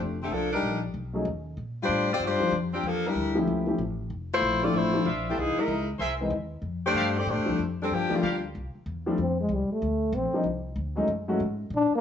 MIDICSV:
0, 0, Header, 1, 7, 480
1, 0, Start_track
1, 0, Key_signature, -1, "major"
1, 0, Tempo, 316957
1, 457, Time_signature, 4, 2, 24, 8
1, 18186, End_track
2, 0, Start_track
2, 0, Title_t, "Trumpet section"
2, 0, Program_c, 0, 61
2, 7629, Note_on_c, 0, 74, 73
2, 7633, Note_on_c, 0, 72, 75
2, 7639, Note_on_c, 0, 65, 79
2, 7641, Note_on_c, 0, 76, 86
2, 8119, Note_off_c, 0, 74, 0
2, 8121, Note_off_c, 0, 72, 0
2, 8124, Note_off_c, 0, 65, 0
2, 8125, Note_off_c, 0, 76, 0
2, 9063, Note_on_c, 0, 68, 82
2, 9069, Note_on_c, 0, 70, 76
2, 9069, Note_on_c, 0, 72, 78
2, 9070, Note_on_c, 0, 76, 91
2, 9279, Note_off_c, 0, 68, 0
2, 9283, Note_off_c, 0, 70, 0
2, 9283, Note_off_c, 0, 72, 0
2, 9284, Note_off_c, 0, 76, 0
2, 10503, Note_on_c, 0, 69, 76
2, 10506, Note_on_c, 0, 74, 73
2, 10508, Note_on_c, 0, 77, 95
2, 10510, Note_on_c, 0, 67, 80
2, 10718, Note_off_c, 0, 69, 0
2, 10721, Note_off_c, 0, 74, 0
2, 10722, Note_off_c, 0, 77, 0
2, 10723, Note_off_c, 0, 67, 0
2, 12433, Note_on_c, 0, 70, 62
2, 12438, Note_on_c, 0, 67, 76
2, 12441, Note_on_c, 0, 74, 64
2, 12441, Note_on_c, 0, 77, 82
2, 12645, Note_off_c, 0, 70, 0
2, 12648, Note_off_c, 0, 67, 0
2, 12650, Note_off_c, 0, 74, 0
2, 12650, Note_off_c, 0, 77, 0
2, 18186, End_track
3, 0, Start_track
3, 0, Title_t, "Saxophone section"
3, 0, Program_c, 1, 65
3, 326, Note_on_c, 1, 50, 64
3, 332, Note_on_c, 1, 67, 71
3, 336, Note_on_c, 1, 60, 71
3, 342, Note_on_c, 1, 57, 68
3, 468, Note_off_c, 1, 50, 0
3, 471, Note_off_c, 1, 67, 0
3, 474, Note_off_c, 1, 60, 0
3, 477, Note_off_c, 1, 57, 0
3, 484, Note_on_c, 1, 69, 92
3, 489, Note_on_c, 1, 62, 77
3, 491, Note_on_c, 1, 58, 79
3, 496, Note_on_c, 1, 53, 76
3, 771, Note_off_c, 1, 62, 0
3, 777, Note_off_c, 1, 69, 0
3, 780, Note_off_c, 1, 58, 0
3, 782, Note_off_c, 1, 53, 0
3, 786, Note_on_c, 1, 70, 88
3, 787, Note_on_c, 1, 63, 70
3, 789, Note_on_c, 1, 62, 72
3, 794, Note_on_c, 1, 55, 68
3, 1222, Note_off_c, 1, 70, 0
3, 1223, Note_off_c, 1, 63, 0
3, 1224, Note_off_c, 1, 62, 0
3, 1226, Note_off_c, 1, 55, 0
3, 2758, Note_on_c, 1, 72, 100
3, 2762, Note_on_c, 1, 62, 89
3, 2766, Note_on_c, 1, 55, 85
3, 2767, Note_on_c, 1, 65, 88
3, 3169, Note_off_c, 1, 72, 0
3, 3171, Note_off_c, 1, 62, 0
3, 3173, Note_off_c, 1, 55, 0
3, 3174, Note_off_c, 1, 65, 0
3, 3217, Note_on_c, 1, 65, 72
3, 3217, Note_on_c, 1, 74, 80
3, 3226, Note_on_c, 1, 60, 81
3, 3231, Note_on_c, 1, 67, 78
3, 3353, Note_off_c, 1, 65, 0
3, 3354, Note_off_c, 1, 74, 0
3, 3358, Note_off_c, 1, 60, 0
3, 3361, Note_off_c, 1, 67, 0
3, 3403, Note_on_c, 1, 62, 84
3, 3403, Note_on_c, 1, 65, 83
3, 3408, Note_on_c, 1, 72, 102
3, 3417, Note_on_c, 1, 55, 80
3, 3849, Note_off_c, 1, 62, 0
3, 3849, Note_off_c, 1, 65, 0
3, 3851, Note_off_c, 1, 72, 0
3, 3856, Note_off_c, 1, 55, 0
3, 4137, Note_on_c, 1, 60, 72
3, 4139, Note_on_c, 1, 62, 62
3, 4143, Note_on_c, 1, 67, 74
3, 4153, Note_on_c, 1, 53, 65
3, 4292, Note_off_c, 1, 60, 0
3, 4293, Note_off_c, 1, 62, 0
3, 4295, Note_off_c, 1, 67, 0
3, 4300, Note_off_c, 1, 53, 0
3, 4319, Note_on_c, 1, 62, 71
3, 4324, Note_on_c, 1, 58, 83
3, 4328, Note_on_c, 1, 53, 82
3, 4329, Note_on_c, 1, 69, 94
3, 4613, Note_off_c, 1, 62, 0
3, 4615, Note_off_c, 1, 58, 0
3, 4617, Note_off_c, 1, 53, 0
3, 4618, Note_off_c, 1, 69, 0
3, 4641, Note_on_c, 1, 70, 81
3, 4646, Note_on_c, 1, 55, 77
3, 4646, Note_on_c, 1, 62, 73
3, 4650, Note_on_c, 1, 64, 77
3, 5100, Note_off_c, 1, 70, 0
3, 5103, Note_off_c, 1, 55, 0
3, 5103, Note_off_c, 1, 62, 0
3, 5105, Note_off_c, 1, 64, 0
3, 6543, Note_on_c, 1, 65, 86
3, 6548, Note_on_c, 1, 57, 85
3, 6550, Note_on_c, 1, 72, 109
3, 6561, Note_on_c, 1, 64, 85
3, 6977, Note_off_c, 1, 65, 0
3, 6980, Note_off_c, 1, 57, 0
3, 6981, Note_off_c, 1, 72, 0
3, 6987, Note_off_c, 1, 64, 0
3, 6999, Note_on_c, 1, 69, 78
3, 6999, Note_on_c, 1, 74, 98
3, 7010, Note_on_c, 1, 60, 75
3, 7013, Note_on_c, 1, 65, 71
3, 7170, Note_off_c, 1, 65, 0
3, 7172, Note_off_c, 1, 69, 0
3, 7172, Note_off_c, 1, 74, 0
3, 7177, Note_off_c, 1, 60, 0
3, 7185, Note_on_c, 1, 57, 87
3, 7188, Note_on_c, 1, 65, 69
3, 7193, Note_on_c, 1, 64, 76
3, 7204, Note_on_c, 1, 72, 89
3, 7657, Note_off_c, 1, 57, 0
3, 7659, Note_off_c, 1, 65, 0
3, 7661, Note_off_c, 1, 64, 0
3, 7667, Note_off_c, 1, 72, 0
3, 8004, Note_on_c, 1, 60, 62
3, 8007, Note_on_c, 1, 67, 78
3, 8018, Note_on_c, 1, 57, 64
3, 8021, Note_on_c, 1, 52, 61
3, 8144, Note_off_c, 1, 60, 0
3, 8145, Note_off_c, 1, 67, 0
3, 8148, Note_off_c, 1, 52, 0
3, 8151, Note_off_c, 1, 57, 0
3, 8161, Note_on_c, 1, 58, 76
3, 8166, Note_on_c, 1, 52, 78
3, 8168, Note_on_c, 1, 68, 88
3, 8169, Note_on_c, 1, 63, 83
3, 8451, Note_off_c, 1, 58, 0
3, 8454, Note_off_c, 1, 52, 0
3, 8454, Note_off_c, 1, 68, 0
3, 8455, Note_off_c, 1, 63, 0
3, 8461, Note_on_c, 1, 56, 72
3, 8467, Note_on_c, 1, 70, 84
3, 8468, Note_on_c, 1, 64, 79
3, 8474, Note_on_c, 1, 63, 71
3, 8928, Note_off_c, 1, 56, 0
3, 8931, Note_off_c, 1, 64, 0
3, 8931, Note_off_c, 1, 70, 0
3, 8934, Note_off_c, 1, 63, 0
3, 10381, Note_on_c, 1, 57, 85
3, 10387, Note_on_c, 1, 72, 96
3, 10395, Note_on_c, 1, 67, 89
3, 10400, Note_on_c, 1, 62, 89
3, 10814, Note_off_c, 1, 57, 0
3, 10818, Note_off_c, 1, 72, 0
3, 10822, Note_off_c, 1, 67, 0
3, 10825, Note_off_c, 1, 62, 0
3, 10862, Note_on_c, 1, 60, 83
3, 10865, Note_on_c, 1, 67, 79
3, 10873, Note_on_c, 1, 69, 77
3, 10877, Note_on_c, 1, 74, 94
3, 11022, Note_off_c, 1, 60, 0
3, 11023, Note_off_c, 1, 67, 0
3, 11027, Note_off_c, 1, 69, 0
3, 11030, Note_off_c, 1, 74, 0
3, 11046, Note_on_c, 1, 72, 84
3, 11048, Note_on_c, 1, 67, 78
3, 11050, Note_on_c, 1, 62, 83
3, 11053, Note_on_c, 1, 57, 77
3, 11507, Note_off_c, 1, 72, 0
3, 11508, Note_off_c, 1, 67, 0
3, 11509, Note_off_c, 1, 62, 0
3, 11510, Note_off_c, 1, 57, 0
3, 11835, Note_on_c, 1, 62, 70
3, 11835, Note_on_c, 1, 69, 85
3, 11836, Note_on_c, 1, 60, 68
3, 11842, Note_on_c, 1, 55, 69
3, 11978, Note_off_c, 1, 60, 0
3, 11978, Note_off_c, 1, 62, 0
3, 11978, Note_off_c, 1, 69, 0
3, 11981, Note_off_c, 1, 55, 0
3, 12003, Note_on_c, 1, 53, 77
3, 12014, Note_on_c, 1, 58, 77
3, 12015, Note_on_c, 1, 67, 90
3, 12023, Note_on_c, 1, 62, 76
3, 12291, Note_off_c, 1, 53, 0
3, 12297, Note_off_c, 1, 58, 0
3, 12297, Note_off_c, 1, 67, 0
3, 12301, Note_off_c, 1, 62, 0
3, 12323, Note_on_c, 1, 55, 70
3, 12326, Note_on_c, 1, 58, 71
3, 12331, Note_on_c, 1, 65, 80
3, 12343, Note_on_c, 1, 62, 72
3, 12779, Note_off_c, 1, 55, 0
3, 12780, Note_off_c, 1, 58, 0
3, 12782, Note_off_c, 1, 65, 0
3, 12789, Note_off_c, 1, 62, 0
3, 18186, End_track
4, 0, Start_track
4, 0, Title_t, "Grand piano"
4, 0, Program_c, 2, 0
4, 0, Note_on_c, 2, 53, 55
4, 0, Note_on_c, 2, 57, 51
4, 0, Note_on_c, 2, 60, 50
4, 0, Note_on_c, 2, 62, 50
4, 0, Note_on_c, 2, 67, 60
4, 218, Note_off_c, 2, 53, 0
4, 223, Note_off_c, 2, 60, 0
4, 225, Note_off_c, 2, 57, 0
4, 225, Note_off_c, 2, 62, 0
4, 231, Note_off_c, 2, 67, 0
4, 1717, Note_on_c, 2, 57, 51
4, 1724, Note_on_c, 2, 54, 55
4, 1729, Note_on_c, 2, 61, 47
4, 1740, Note_on_c, 2, 63, 56
4, 1748, Note_on_c, 2, 68, 57
4, 1877, Note_off_c, 2, 57, 0
4, 1880, Note_off_c, 2, 54, 0
4, 1883, Note_off_c, 2, 61, 0
4, 1888, Note_off_c, 2, 63, 0
4, 1892, Note_off_c, 2, 68, 0
4, 3630, Note_on_c, 2, 53, 53
4, 3642, Note_on_c, 2, 58, 42
4, 3647, Note_on_c, 2, 60, 46
4, 3649, Note_on_c, 2, 62, 41
4, 3661, Note_on_c, 2, 67, 54
4, 3792, Note_off_c, 2, 53, 0
4, 3799, Note_off_c, 2, 58, 0
4, 3801, Note_off_c, 2, 60, 0
4, 3802, Note_off_c, 2, 62, 0
4, 3808, Note_off_c, 2, 67, 0
4, 5073, Note_on_c, 2, 53, 66
4, 5086, Note_on_c, 2, 57, 54
4, 5088, Note_on_c, 2, 61, 53
4, 5100, Note_on_c, 2, 64, 63
4, 5101, Note_on_c, 2, 67, 68
4, 5525, Note_off_c, 2, 53, 0
4, 5532, Note_off_c, 2, 57, 0
4, 5533, Note_off_c, 2, 61, 0
4, 5539, Note_off_c, 2, 64, 0
4, 5539, Note_off_c, 2, 67, 0
4, 5558, Note_on_c, 2, 53, 53
4, 5558, Note_on_c, 2, 57, 48
4, 5566, Note_on_c, 2, 61, 47
4, 5566, Note_on_c, 2, 64, 48
4, 5583, Note_on_c, 2, 67, 61
4, 5715, Note_off_c, 2, 53, 0
4, 5715, Note_off_c, 2, 57, 0
4, 5719, Note_off_c, 2, 61, 0
4, 5719, Note_off_c, 2, 64, 0
4, 5727, Note_off_c, 2, 67, 0
4, 7010, Note_on_c, 2, 53, 60
4, 7017, Note_on_c, 2, 57, 57
4, 7022, Note_on_c, 2, 60, 59
4, 7024, Note_on_c, 2, 62, 60
4, 7035, Note_on_c, 2, 64, 69
4, 7450, Note_off_c, 2, 53, 0
4, 7456, Note_off_c, 2, 57, 0
4, 7459, Note_off_c, 2, 60, 0
4, 7459, Note_off_c, 2, 62, 0
4, 7465, Note_off_c, 2, 64, 0
4, 7473, Note_on_c, 2, 53, 64
4, 7479, Note_on_c, 2, 57, 53
4, 7483, Note_on_c, 2, 60, 55
4, 7483, Note_on_c, 2, 62, 58
4, 7485, Note_on_c, 2, 65, 71
4, 7631, Note_off_c, 2, 53, 0
4, 7634, Note_off_c, 2, 57, 0
4, 7636, Note_off_c, 2, 60, 0
4, 7636, Note_off_c, 2, 62, 0
4, 7637, Note_off_c, 2, 65, 0
4, 9393, Note_on_c, 2, 56, 57
4, 9398, Note_on_c, 2, 52, 64
4, 9406, Note_on_c, 2, 60, 57
4, 9416, Note_on_c, 2, 58, 58
4, 9420, Note_on_c, 2, 63, 67
4, 9551, Note_off_c, 2, 56, 0
4, 9553, Note_off_c, 2, 52, 0
4, 9557, Note_off_c, 2, 60, 0
4, 9562, Note_off_c, 2, 58, 0
4, 9564, Note_off_c, 2, 63, 0
4, 11292, Note_on_c, 2, 55, 51
4, 11294, Note_on_c, 2, 53, 62
4, 11296, Note_on_c, 2, 57, 59
4, 11307, Note_on_c, 2, 62, 59
4, 11313, Note_on_c, 2, 60, 55
4, 11459, Note_off_c, 2, 55, 0
4, 11461, Note_off_c, 2, 53, 0
4, 11461, Note_off_c, 2, 57, 0
4, 11467, Note_off_c, 2, 62, 0
4, 11470, Note_off_c, 2, 60, 0
4, 12259, Note_on_c, 2, 53, 67
4, 12266, Note_on_c, 2, 55, 57
4, 12268, Note_on_c, 2, 57, 57
4, 12277, Note_on_c, 2, 62, 70
4, 12281, Note_on_c, 2, 58, 56
4, 12423, Note_off_c, 2, 53, 0
4, 12427, Note_off_c, 2, 55, 0
4, 12427, Note_off_c, 2, 57, 0
4, 12432, Note_off_c, 2, 62, 0
4, 12434, Note_off_c, 2, 58, 0
4, 13727, Note_on_c, 2, 53, 68
4, 13730, Note_on_c, 2, 55, 57
4, 13741, Note_on_c, 2, 62, 73
4, 13742, Note_on_c, 2, 60, 58
4, 13746, Note_on_c, 2, 57, 57
4, 13878, Note_off_c, 2, 53, 0
4, 13879, Note_off_c, 2, 55, 0
4, 13885, Note_off_c, 2, 60, 0
4, 13885, Note_off_c, 2, 62, 0
4, 13887, Note_off_c, 2, 57, 0
4, 15649, Note_on_c, 2, 55, 49
4, 15654, Note_on_c, 2, 53, 53
4, 15657, Note_on_c, 2, 58, 52
4, 15665, Note_on_c, 2, 62, 51
4, 15676, Note_on_c, 2, 63, 69
4, 15800, Note_off_c, 2, 55, 0
4, 15802, Note_off_c, 2, 53, 0
4, 15804, Note_off_c, 2, 58, 0
4, 15808, Note_off_c, 2, 62, 0
4, 15814, Note_off_c, 2, 63, 0
4, 16592, Note_on_c, 2, 54, 60
4, 16604, Note_on_c, 2, 56, 62
4, 16608, Note_on_c, 2, 57, 57
4, 16614, Note_on_c, 2, 63, 75
4, 16616, Note_on_c, 2, 61, 55
4, 16752, Note_off_c, 2, 54, 0
4, 16758, Note_off_c, 2, 56, 0
4, 16760, Note_off_c, 2, 57, 0
4, 16763, Note_off_c, 2, 63, 0
4, 16764, Note_off_c, 2, 61, 0
4, 17082, Note_on_c, 2, 54, 62
4, 17086, Note_on_c, 2, 57, 65
4, 17089, Note_on_c, 2, 56, 61
4, 17098, Note_on_c, 2, 61, 67
4, 17100, Note_on_c, 2, 66, 75
4, 17238, Note_off_c, 2, 54, 0
4, 17240, Note_off_c, 2, 57, 0
4, 17241, Note_off_c, 2, 56, 0
4, 17246, Note_off_c, 2, 61, 0
4, 17246, Note_off_c, 2, 66, 0
4, 18186, End_track
5, 0, Start_track
5, 0, Title_t, "Trombone"
5, 0, Program_c, 3, 57
5, 13940, Note_on_c, 3, 60, 71
5, 14201, Note_off_c, 3, 60, 0
5, 14247, Note_on_c, 3, 56, 68
5, 14436, Note_on_c, 3, 55, 60
5, 14459, Note_off_c, 3, 56, 0
5, 14709, Note_off_c, 3, 55, 0
5, 14726, Note_on_c, 3, 57, 68
5, 15368, Note_on_c, 3, 60, 77
5, 15391, Note_off_c, 3, 57, 0
5, 15830, Note_off_c, 3, 60, 0
5, 17805, Note_on_c, 3, 62, 88
5, 18057, Note_off_c, 3, 62, 0
5, 18100, Note_on_c, 3, 58, 84
5, 18186, Note_off_c, 3, 58, 0
5, 18186, End_track
6, 0, Start_track
6, 0, Title_t, "Upright bass"
6, 0, Program_c, 4, 32
6, 0, Note_on_c, 4, 29, 87
6, 443, Note_off_c, 4, 29, 0
6, 454, Note_on_c, 4, 36, 74
6, 921, Note_off_c, 4, 36, 0
6, 939, Note_on_c, 4, 34, 87
6, 1404, Note_off_c, 4, 34, 0
6, 1421, Note_on_c, 4, 35, 78
6, 1884, Note_off_c, 4, 35, 0
6, 1895, Note_on_c, 4, 39, 91
6, 2361, Note_off_c, 4, 39, 0
6, 2377, Note_on_c, 4, 46, 73
6, 2842, Note_off_c, 4, 46, 0
6, 2854, Note_on_c, 4, 45, 84
6, 3320, Note_off_c, 4, 45, 0
6, 3329, Note_on_c, 4, 43, 80
6, 3616, Note_off_c, 4, 43, 0
6, 3805, Note_on_c, 4, 41, 95
6, 4275, Note_off_c, 4, 41, 0
6, 4291, Note_on_c, 4, 40, 87
6, 4758, Note_off_c, 4, 40, 0
6, 4775, Note_on_c, 4, 38, 84
6, 5240, Note_off_c, 4, 38, 0
6, 5261, Note_on_c, 4, 37, 79
6, 5723, Note_off_c, 4, 37, 0
6, 5732, Note_on_c, 4, 33, 90
6, 6197, Note_off_c, 4, 33, 0
6, 6209, Note_on_c, 4, 29, 81
6, 6676, Note_off_c, 4, 29, 0
6, 6688, Note_on_c, 4, 34, 89
6, 7155, Note_off_c, 4, 34, 0
6, 7171, Note_on_c, 4, 33, 90
6, 7636, Note_off_c, 4, 33, 0
6, 7651, Note_on_c, 4, 34, 96
6, 8116, Note_off_c, 4, 34, 0
6, 8136, Note_on_c, 4, 36, 77
6, 8417, Note_off_c, 4, 36, 0
6, 8600, Note_on_c, 4, 37, 96
6, 9070, Note_off_c, 4, 37, 0
6, 9077, Note_on_c, 4, 36, 82
6, 9535, Note_off_c, 4, 36, 0
6, 9544, Note_on_c, 4, 39, 90
6, 10012, Note_off_c, 4, 39, 0
6, 10021, Note_on_c, 4, 41, 75
6, 10499, Note_off_c, 4, 41, 0
6, 10507, Note_on_c, 4, 43, 97
6, 10983, Note_off_c, 4, 43, 0
6, 11001, Note_on_c, 4, 45, 80
6, 11168, Note_on_c, 4, 41, 59
6, 11191, Note_off_c, 4, 45, 0
6, 11318, Note_off_c, 4, 41, 0
6, 11328, Note_on_c, 4, 38, 65
6, 11476, Note_off_c, 4, 38, 0
6, 11493, Note_on_c, 4, 41, 89
6, 11956, Note_off_c, 4, 41, 0
6, 11980, Note_on_c, 4, 43, 72
6, 12259, Note_off_c, 4, 43, 0
6, 12464, Note_on_c, 4, 38, 89
6, 12922, Note_off_c, 4, 38, 0
6, 12947, Note_on_c, 4, 36, 78
6, 13223, Note_off_c, 4, 36, 0
6, 13416, Note_on_c, 4, 40, 83
6, 13879, Note_off_c, 4, 40, 0
6, 13903, Note_on_c, 4, 41, 80
6, 14359, Note_off_c, 4, 41, 0
6, 14368, Note_on_c, 4, 36, 86
6, 14653, Note_off_c, 4, 36, 0
6, 14870, Note_on_c, 4, 38, 83
6, 15327, Note_off_c, 4, 38, 0
6, 15334, Note_on_c, 4, 34, 96
6, 15617, Note_off_c, 4, 34, 0
6, 15805, Note_on_c, 4, 36, 80
6, 16274, Note_off_c, 4, 36, 0
6, 16291, Note_on_c, 4, 38, 85
6, 16758, Note_off_c, 4, 38, 0
6, 16775, Note_on_c, 4, 42, 87
6, 17241, Note_off_c, 4, 42, 0
6, 17262, Note_on_c, 4, 44, 82
6, 17715, Note_off_c, 4, 44, 0
6, 17724, Note_on_c, 4, 46, 86
6, 18014, Note_off_c, 4, 46, 0
6, 18186, End_track
7, 0, Start_track
7, 0, Title_t, "Muted upright bass strokes"
7, 3635, Note_on_c, 9, 29, 38
7, 3786, Note_off_c, 9, 29, 0
7, 8431, Note_on_c, 9, 29, 41
7, 8583, Note_off_c, 9, 29, 0
7, 12286, Note_on_c, 9, 29, 43
7, 12437, Note_off_c, 9, 29, 0
7, 13255, Note_on_c, 9, 29, 37
7, 13406, Note_off_c, 9, 29, 0
7, 14688, Note_on_c, 9, 29, 33
7, 14839, Note_off_c, 9, 29, 0
7, 15641, Note_on_c, 9, 29, 35
7, 15793, Note_off_c, 9, 29, 0
7, 18029, Note_on_c, 9, 29, 41
7, 18181, Note_off_c, 9, 29, 0
7, 18186, End_track
0, 0, End_of_file